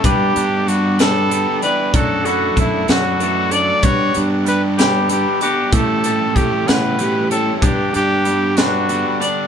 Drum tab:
HH |xxxxxx|xxxxxx|xxxxxx|xxxxxx|
SD |---o--|---o--|---o--|---o--|
BD |o-----|o-o---|o-----|o-o---|

HH |xxxxxx|
SD |---o--|
BD |o-----|